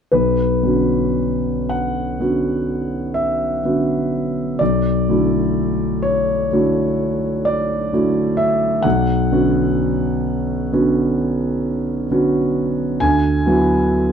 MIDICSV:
0, 0, Header, 1, 2, 480
1, 0, Start_track
1, 0, Tempo, 1043478
1, 58, Time_signature, 9, 3, 24, 8
1, 1020, Tempo, 953895
1, 3420, Tempo, 933126
1, 5340, Tempo, 916031
1, 7122, End_track
2, 0, Start_track
2, 0, Title_t, "Grand piano"
2, 0, Program_c, 0, 0
2, 53, Note_on_c, 0, 71, 55
2, 58, Note_on_c, 0, 35, 35
2, 160, Control_c, 0, 64, 127
2, 289, Note_off_c, 0, 35, 0
2, 290, Note_on_c, 0, 50, 28
2, 290, Note_on_c, 0, 59, 29
2, 295, Note_on_c, 0, 61, 33
2, 295, Note_on_c, 0, 66, 34
2, 779, Note_on_c, 0, 78, 58
2, 786, Note_off_c, 0, 71, 0
2, 998, Note_off_c, 0, 59, 0
2, 999, Note_off_c, 0, 50, 0
2, 1001, Note_off_c, 0, 61, 0
2, 1001, Note_off_c, 0, 66, 0
2, 1008, Note_on_c, 0, 50, 31
2, 1012, Note_on_c, 0, 59, 31
2, 1014, Note_on_c, 0, 61, 32
2, 1017, Note_on_c, 0, 66, 35
2, 1486, Note_on_c, 0, 76, 61
2, 1492, Note_off_c, 0, 78, 0
2, 1708, Note_off_c, 0, 50, 0
2, 1710, Note_off_c, 0, 59, 0
2, 1711, Note_off_c, 0, 61, 0
2, 1713, Note_off_c, 0, 66, 0
2, 1736, Note_on_c, 0, 50, 29
2, 1739, Note_on_c, 0, 59, 29
2, 1739, Note_on_c, 0, 61, 30
2, 1742, Note_on_c, 0, 66, 33
2, 2200, Note_off_c, 0, 50, 0
2, 2201, Note_off_c, 0, 59, 0
2, 2201, Note_off_c, 0, 61, 0
2, 2203, Note_off_c, 0, 66, 0
2, 2213, Note_off_c, 0, 76, 0
2, 2214, Note_on_c, 0, 74, 64
2, 2224, Note_on_c, 0, 35, 36
2, 2227, Control_c, 0, 64, 0
2, 2319, Control_c, 0, 64, 127
2, 2456, Note_off_c, 0, 35, 0
2, 2463, Note_on_c, 0, 50, 30
2, 2465, Note_on_c, 0, 57, 32
2, 2467, Note_on_c, 0, 64, 32
2, 2470, Note_on_c, 0, 66, 37
2, 2936, Note_on_c, 0, 73, 62
2, 2938, Note_off_c, 0, 74, 0
2, 3161, Note_off_c, 0, 50, 0
2, 3162, Note_off_c, 0, 57, 0
2, 3163, Note_off_c, 0, 64, 0
2, 3164, Note_off_c, 0, 66, 0
2, 3185, Note_on_c, 0, 50, 35
2, 3190, Note_on_c, 0, 57, 34
2, 3192, Note_on_c, 0, 66, 38
2, 3193, Note_on_c, 0, 64, 35
2, 3659, Note_on_c, 0, 74, 68
2, 3662, Note_off_c, 0, 73, 0
2, 3885, Note_off_c, 0, 50, 0
2, 3888, Note_off_c, 0, 57, 0
2, 3889, Note_off_c, 0, 64, 0
2, 3889, Note_off_c, 0, 66, 0
2, 3905, Note_on_c, 0, 50, 35
2, 3905, Note_on_c, 0, 57, 33
2, 3909, Note_on_c, 0, 64, 34
2, 3910, Note_on_c, 0, 66, 37
2, 4132, Note_on_c, 0, 76, 68
2, 4137, Note_off_c, 0, 74, 0
2, 4356, Note_off_c, 0, 50, 0
2, 4356, Note_off_c, 0, 57, 0
2, 4359, Note_off_c, 0, 64, 0
2, 4359, Note_off_c, 0, 66, 0
2, 4366, Note_on_c, 0, 78, 75
2, 4372, Note_off_c, 0, 76, 0
2, 4374, Note_on_c, 0, 35, 49
2, 4385, Control_c, 0, 64, 0
2, 4474, Control_c, 0, 64, 127
2, 4605, Note_off_c, 0, 35, 0
2, 4617, Note_on_c, 0, 59, 37
2, 4618, Note_on_c, 0, 50, 37
2, 4622, Note_on_c, 0, 61, 37
2, 4626, Note_on_c, 0, 66, 42
2, 5322, Note_off_c, 0, 50, 0
2, 5322, Note_off_c, 0, 59, 0
2, 5324, Note_off_c, 0, 61, 0
2, 5326, Note_off_c, 0, 66, 0
2, 5343, Note_on_c, 0, 59, 40
2, 5344, Note_on_c, 0, 50, 39
2, 5347, Note_on_c, 0, 61, 42
2, 5350, Note_on_c, 0, 66, 40
2, 6040, Note_off_c, 0, 59, 0
2, 6041, Note_off_c, 0, 50, 0
2, 6042, Note_off_c, 0, 61, 0
2, 6043, Note_off_c, 0, 66, 0
2, 6064, Note_on_c, 0, 50, 37
2, 6070, Note_on_c, 0, 59, 38
2, 6071, Note_on_c, 0, 61, 39
2, 6073, Note_on_c, 0, 66, 42
2, 6521, Note_off_c, 0, 50, 0
2, 6524, Note_off_c, 0, 59, 0
2, 6525, Note_off_c, 0, 61, 0
2, 6526, Note_off_c, 0, 66, 0
2, 6535, Note_off_c, 0, 78, 0
2, 6536, Note_on_c, 0, 80, 80
2, 6539, Note_on_c, 0, 38, 51
2, 6548, Control_c, 0, 64, 0
2, 6620, Control_c, 0, 64, 127
2, 6773, Note_off_c, 0, 38, 0
2, 6775, Note_on_c, 0, 54, 42
2, 6780, Note_on_c, 0, 59, 40
2, 6780, Note_on_c, 0, 64, 38
2, 6783, Note_on_c, 0, 66, 42
2, 7122, Note_off_c, 0, 54, 0
2, 7122, Note_off_c, 0, 59, 0
2, 7122, Note_off_c, 0, 64, 0
2, 7122, Note_off_c, 0, 66, 0
2, 7122, Note_off_c, 0, 80, 0
2, 7122, End_track
0, 0, End_of_file